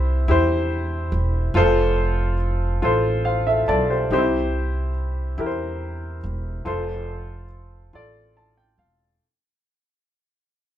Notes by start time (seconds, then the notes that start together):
Already playing: C2 C3 E4 G4 C5
0.28 E2 E4 G4 C5
1.12 E1
1.54 F1 F4 A4 C5
2.82 A1 F4 A4 C5
3.25 C5 F5
3.47 A4 E5
3.68 B1 A4 D5 A5
3.90 G4 C5
4.11 C2 C3 D#4 G4 C5
4.18 E4
5.38 E2 E4 G4 A#4
5.46 C5
6.24 E1
6.65 F1 F4 A4 C5
7.93 A1 F4 A4 D5
8.37 A5
8.57 G5
8.78 E1 F5